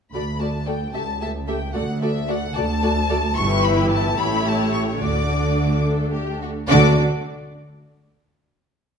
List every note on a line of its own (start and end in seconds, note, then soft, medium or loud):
0.13 0.84 D2 soft
0.13 0.85 D2 soft
0.13 0.21 A3 soft
0.13 0.21 F#4 soft
0.13 0.23 A4 soft
0.13 0.23 D5 soft
0.13 0.38 B5 medium
0.39 0.47 A3 soft
0.39 0.47 F#4 soft
0.39 0.49 A4 soft
0.39 0.49 D5 soft
0.39 0.67 A5 soft
0.66 0.75 A3 soft
0.66 0.75 F#4 soft
0.66 0.74 A4 soft
0.66 0.74 D5 soft
0.66 0.94 G5 medium
0.93 1.65 C#2 soft
0.93 1.66 C#2 soft
0.93 1.02 A3 soft
0.93 1.02 G4 soft
0.93 1.01 A4 soft
0.93 1.02 E5 soft
0.93 1.20 A5 medium
1.21 1.29 A3 soft
1.21 1.29 G4 soft
1.21 1.30 A4 soft
1.21 1.30 E5 soft
1.21 1.29 A5 medium
1.47 1.56 A3 soft
1.47 1.56 G4 soft
1.47 1.55 A4 soft
1.47 1.55 E5 soft
1.47 1.75 G5 medium
1.74 2.46 D2 medium
1.74 1.82 A3 medium
1.74 1.82 F#4 medium
1.74 1.83 A4 soft
1.74 1.82 D5 soft
1.74 2.01 F#5 medium
2.01 2.10 A3 soft
2.01 2.10 F#4 medium
2.01 2.10 A4 soft
2.01 2.10 D5 soft
2.01 2.28 E5 medium
2.28 2.37 A3 medium
2.28 2.37 F#4 soft
2.28 2.36 A4 soft
2.28 2.36 D5 soft
2.28 2.55 F#5 medium
2.55 3.26 D2 medium
2.55 2.64 A3 medium
2.55 2.64 F#4 medium
2.55 2.64 A4 medium
2.55 2.63 D5 medium
2.55 3.35 A5 medium
2.82 2.90 A3 medium
2.82 2.90 F#4 medium
2.82 2.91 A4 medium
2.82 2.91 D5 medium
3.09 3.18 A3 medium
3.09 3.17 F#4 medium
3.09 3.18 A4 medium
3.09 3.17 D5 medium
3.35 4.13 G1 medium
3.35 4.13 G2 medium
3.35 4.13 E3 medium
3.35 4.13 E4 medium
3.35 4.13 G4 medium
3.35 4.14 B4 medium
3.35 3.62 C#6 loud
3.63 3.90 B5 medium
3.90 4.17 A5 medium
4.16 4.99 A1 medium
4.16 4.98 A2 medium
4.16 4.98 A3 medium
4.16 4.98 E4 medium
4.16 4.99 G4 medium
4.16 4.99 C#5 medium
4.16 4.45 B5 medium
4.46 4.73 A5 medium
4.73 4.81 C#6 medium
5.00 6.49 D2 medium
5.00 6.49 D3 medium
5.00 6.46 A3 medium
5.00 6.46 D4 medium
5.00 5.78 F#4 soft
5.00 5.80 D5 soft
5.00 5.83 D6 medium
5.85 6.11 A4 medium
6.13 6.41 G4 medium
6.41 6.49 F#4 soft
6.69 7.01 D2 medium
6.69 7.01 D3 medium
6.69 7.01 A3 medium
6.69 7.01 D4 medium
6.69 7.00 F#4 medium
6.69 7.00 D5 medium
6.69 7.02 D6 medium